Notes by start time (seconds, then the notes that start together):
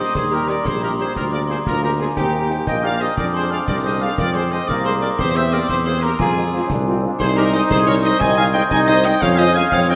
Already playing: G3 C5 D#5 D#6
0.14 D#2 G#4 C5 C6, concert bass drum, snare
0.31 A#3 D#4 G4 A#4 A#5
0.48 A#3 D#4 G4 A#4 D5 D6, snare
0.64 A#1 G#4 C5 C6, concert bass drum, snare
0.81 A#3 D#4 G4 A#4 A#5
0.97 A#3 D#4 G4 G#4 C5 C6, snare
1.14 D2 F4 A#4 A#5, concert bass drum, snare
1.31 A#3 F4 G#4 A#4 D5 D6
1.48 A#3 F4 G#4 C5 C6, snare
1.65 D2 A#3 F4 A#4 A#5, concert bass drum, snare
1.83 A#3 F4 G4 G#4 A#4 A#5
1.99 A#3 F4 G#4 G#5
2.16 D#2 C4 D#4 G4 G5, concert bass drum, snare
2.33 A#3 D#4 G4
2.50 A#3 C4 D#4 G4, snare
2.67 A#1 A#3 D#5 G5 G6, concert bass drum, snare
2.83 A#3 D#4 G4 D5 F5 F6
3.00 A#3 D#4 G4 C5 D#5 D#6, snare
3.17 F2 D4 A#4 D5 D6, concert bass drum, snare, crash
3.34 G#3 C4 G#4 C5 C6
3.50 G#3 C4 G#4 D5 F5 F6, snare
3.66 C2 A#4 D5 D6, concert bass drum, snare
3.84 G#3 C4 G#4 C5 D#5 D#6
4.01 G#3 C4 G#4 D5 F5 F6
4.17 F2 C4 A#4 D5 D6, concert bass drum, snare
4.34 G#3 C4 G#4 C5 C6
4.51 G#3 C4 G#4 C5 D#5 D#6, snare
4.67 C2 A#3 A#4 D5 D6, concert bass drum, snare
4.84 G#3 C4 G#4 C5 C6
5.01 G#3 C4 G#4 A#4 D5 D6, snare
5.18 E2 C4 G4 C5 C6, concert bass drum, snare
5.35 A#3 C4 G4 C5 E5 E6
5.52 A#3 C4 G4 A#4 D5 D6, snare
5.68 E2 G4 C5 C6, concert bass drum, snare
5.85 A#3 C4 G4 G#4 C5 C6
6.01 A#3 C4 G4 A#4 A#5
6.19 F2 A#3 F4 G#4 G#5, concert bass drum, snare
6.35 G#3 C4 F4
6.52 G#3 C4 F4
6.69 C2 D4, concert bass drum, snare
6.86 G#3 C4 F4
7.03 G#3 C4 D4 F4
7.20 C2 D#4 G#4 C5 C6, concert bass drum, snare, crash
7.36 G#3 C4 D#4 G4 A#4 A#5
7.53 G#3 C4 D#4 C5 D#5 D#6, snare
7.70 C2 G#4 C5 C6, concert bass drum, snare
7.87 G#3 C4 D#4 A#4 C#5 C#6
8.03 G#3 C4 D#4 C5 D#5 D#6
8.19 C2 C4 D#5 G#5 G#6, concert bass drum, snare
8.36 G#3 C4 D#4 F5 G#5 G#6
8.54 G#3 C4 D#4 D#5 G5 G6, snare
8.70 C2 D#4 D#5 G#5 G#6, concert bass drum, snare
8.87 G#3 C4 D#4 C5 D#5 D#6
9.04 G#3 C4 D#4 D#5 G5 G6, snare
9.21 F2 C#4 C#5 F5 F6, concert bass drum, snare
9.37 G#3 C#4 F4 C5 D#5 D#6
9.54 G#3 C#4 F4 F5 G#5 G#6, snare
9.71 F2 C4 C#5 F5 F6, concert bass drum, snare
9.89 G#3 C#4 F4 D#5 G5 G6